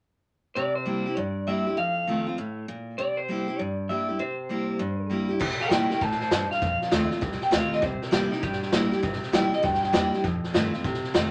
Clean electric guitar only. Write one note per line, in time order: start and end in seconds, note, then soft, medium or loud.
0.55 0.75 D5 loud
0.75 1.17 C5 medium
1.17 1.47 D5 medium
1.48 1.77 E5 medium
1.78 2.66 F5 medium
2.98 3.17 D5 loud
3.17 3.59 C5 medium
3.59 3.88 D5 medium
3.89 4.19 E5 medium
4.20 5.08 C5 medium
5.61 5.70 A#4 medium
5.61 5.71 G5 medium
5.71 5.89 A#4 medium
5.71 5.90 G5 medium
5.91 6.01 A#4 medium
5.91 6.02 G5 medium
6.01 6.20 C5 medium
6.01 6.20 A5 medium
6.21 6.31 C5 medium
6.21 6.31 A5 medium
6.32 6.50 C5 medium
6.32 6.51 A5 medium
6.51 7.10 F5 loud
7.43 7.53 G5 medium
7.53 7.72 F5 medium
7.74 7.84 D#5 medium
7.84 8.03 C5 medium
8.03 8.13 A#4 medium
8.13 8.32 G4 medium
8.32 8.42 D#4 medium
8.43 9.02 G4 loud
9.35 9.53 G5 loud
9.54 9.64 D#5 loud
9.65 9.82 G5 medium
9.83 9.93 G5 medium
9.95 10.24 G5 loud